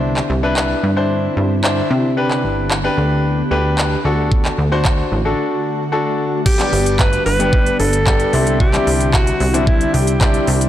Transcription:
<<
  \new Staff \with { instrumentName = "Alto saxophone" } { \time 4/4 \key g \major \tempo 4 = 112 r1 | r1 | r1 | g'4 b'8 b'4 a'4. |
g'4 fis'4 e'8 g'8 g'8. r16 | }
  \new Staff \with { instrumentName = "Grand piano" } { \time 4/4 \key g \major <d' e' c''>8 r16 <d' e' b'>8. r16 <d' e' c''>4 r16 <d' e' c''>8. r16 | <d' g' b'>4 r16 <d' g' b'>4 r16 <d' g' b'>8. r16 <d' fis' a'>8~ | <d' fis' a'>8 r16 <d' fis' c''>8. r16 <d' fis' a'>4 r16 <d' fis' a'>8. r16 | r16 <g b d' g'>4~ <g b d' g'>16 r16 <g b d' g'>4 r16 <g b d' g'>8 <g c' d' e'>8~ |
<g c' d' e'>16 <g c' d' e'>4~ <g c' d' e'>16 r16 <g c' d' e'>4 r16 <g c' d' e'>4 | }
  \new Staff \with { instrumentName = "Ambient pad" } { \time 4/4 \key g \major << { <c' e'>1 | <b g'>2.~ <b g'>8 <a fis'>8~ | <a fis'>1 | <b g'>2.~ <b g'>8 <c' e'>8~ |
<c' e'>1 | } \\ { d1~ | d1~ | d1 | d1~ |
d1 | } >> }
  \new Staff \with { instrumentName = "Analog synth bass" } { \clef bass \time 4/4 \key g \major c,8 c,4 g,4 g,4 c8~ | c8 g,,4 d,4 d,4 d,8~ | d,8 d,4 a,,8 r2 | r8 g,,4 g,,4 g,,4 c,8~ |
c,8 c,4 c,4 c,4 c,8 | }
  \new DrumStaff \with { instrumentName = "Drums" } \drummode { \time 4/4 r16 hc8. hc4 r4 hc4 | r16 hc8. hc4 r4 hc4 | bd16 hc8. <hc bd>4 r4 r4 | <cymc bd>16 <hc hh>16 hho16 hh16 <hc bd>16 hh16 hho16 hh16 bd16 hh16 hho16 hh16 <hc bd>16 hh16 hho16 hh16 |
bd16 <hc hh>16 hho16 hh16 <hc bd>16 hh16 hho16 hh16 bd16 hh16 hho16 hh16 <hc bd>16 hh16 hho16 hh16 | }
>>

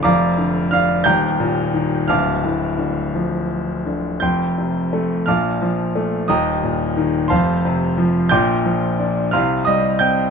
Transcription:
<<
  \new Staff \with { instrumentName = "Grand piano" } { \time 6/8 \key ees \lydian \tempo 4. = 59 <d'' f'' bes'' d'''>4 <f'' f'''>8 <g'' bes'' g'''>4. | <f'' a'' d''' f'''>2 r4 | <g'' c''' g'''>4. <f'' a'' d''' f'''>4. | <ees'' g'' bes'' ees'''>4. <c'' f'' a'' c'''>4 r8 |
<g'' c''' d''' g'''>4. <f'' c''' f'''>8 <ees'' ees'''>8 <g'' g'''>8 | }
  \new Staff \with { instrumentName = "Grand piano" } { \clef bass \time 6/8 \key ees \lydian <f,, f,>8 d8 d'8 <ees,, ees,>8 bes,8 ees8 | <d,, d,>8 a,8 d8 f4 d8 | <f,, f,>8 c8 a8 <bes,, bes,>8 f8 a8 | <ees,, ees,>8 bes,8 ees8 <f,, f,>8 c8 f8 |
<bes,, bes,>8 f8 d'8 <c, c>8 g8 c'8 | }
>>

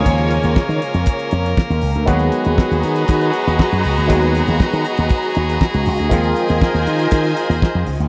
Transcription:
<<
  \new Staff \with { instrumentName = "String section" } { \time 4/4 \key aes \dorian \tempo 4 = 119 <f' des'' aes''>2.~ <f' des'' aes''>8 r8 | <ges' ees'' bes''>1~ | <ges' ees'' bes''>1 | <f' ees'' aes''>1 | }
  \new Staff \with { instrumentName = "Horn section" } { \time 4/4 \key aes \dorian <aes' bes' des''>2. r4 | <ges' aes' ces''>1~ | <ges' aes' ces''>2.~ <ges' aes' ces''>8 r8 | <ees' f' bes'>2.~ <ees' f' bes'>8 r8 | }
  \new Staff \with { instrumentName = "French horn section" } { \time 4/4 \key aes \dorian <bes des' bes'>1 | <ces' ges' aes'>1~ | <ces' ges' aes'>1 | <ees ees' c''>1 | }
  \new Staff \with { instrumentName = "Clav" } { \clef bass \time 4/4 \key aes \dorian <des f aes bes aes'>2.~ <des f aes bes aes'>8 r8 | <ees ges aes ces' ges'>1 | <ees ges aes ces' ges'>1 | <ees f aes c' f'>1 | }
  \new Staff \with { instrumentName = "Slap bass" } { \clef bass \time 4/4 \key aes \dorian ees,8. ees,16 r16 ees16 r16 f,16 r8 f,8 r16 ees,16 des,16 d,16 | ees,8 r16 ees,16 r16 ees,16 ees8 ees8 r16 ees,16 r16 ges,16 des,16 d,16 | ees,8. ees,16 r16 ees16 r16 ees,16 r8 ees,8 r16 des,16 des,16 d,16 | ees,8 r16 ees,16 r16 ees,16 ees8 ees8 r16 ees,16 r16 f,16 des,16 d,16 | }
  \new DrumStaff \with { instrumentName = "Drums" } \drummode { \time 4/4 <hh bd>16 hh16 hh16 hh16 <bd sn>16 hh16 hh16 hh16 <hh bd>16 hh16 hh16 hh16 <bd sn>16 hh16 <hho sn>16 hh16 | <hh bd>16 hh16 hh16 hh16 <bd sn>16 hh16 hh16 hh16 <hh bd>16 hh16 hh16 hh16 <bd sn>16 hh16 <hho sn>16 hh16 | <hh bd>16 hh16 hh16 hh16 <bd sn>16 hh16 hh16 hh16 <hh bd>16 hh16 hh16 hh16 <bd sn>16 hh16 <hho sn>16 hh16 | <hh bd>16 hh16 hh16 hh16 <bd sn>16 hh16 hh16 hh16 <hh bd>16 hh16 hh16 hh16 <bd sn>8 <hho sn>16 hh16 | }
>>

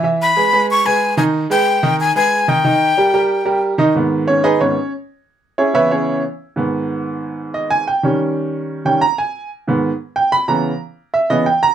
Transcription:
<<
  \new Staff \with { instrumentName = "Flute" } { \time 4/4 \key gis \minor \tempo 4 = 184 r8 b''4. cis'''8 gis''4 gis''8 | r8 g''4. gis''8 gis''4 g''8~ | g''2. r4 | r1 |
r1 | r1 | r1 | r1 |
r1 | }
  \new Staff \with { instrumentName = "Upright piano" } { \time 4/4 \key gis \minor <e e' e''>4 <gis gis' b'>8 <gis gis' b'>4 <gis gis' b'>4 <dis dis' dis''>8~ | <dis dis' dis''>8 <gis gis' b'>4 <dis dis' dis''>4 <gis gis' b'>4 <dis dis' dis''>8 | <dis dis' dis''>4 <g g' ais'>8 <g g' ais'>4 <g g' ais'>4 <dis dis' dis''>8 | r4 <cis' cis''>8 <dis' gis' b' dis''>8 <cis' cis''>4 r4 |
r4 <cis' e' gis' cis''>8 <e' b' cis'' e''>8 <cis' e' gis' cis''>4 r4 | r2. dis''8 gis''8 | g''4 r2 g''8 ais''8 | gis''4 r2 g''8 b''8 |
ais''4 r4 e''8 dis''8 g''8 ais''8 | }
  \new Staff \with { instrumentName = "Upright piano" } { \clef bass \time 4/4 \key gis \minor r1 | r1 | r1 | <gis, dis b>2 <gis, dis b>8 r4. |
r4. <cis e b>4. r4 | <gis, dis b>1 | r8 <dis g cis'>2~ <dis g cis'>8 <dis g cis'>8 r8 | r4. <gis, dis b>8 r2 |
<cis e b>8 r2 <cis e b>8 r4 | }
>>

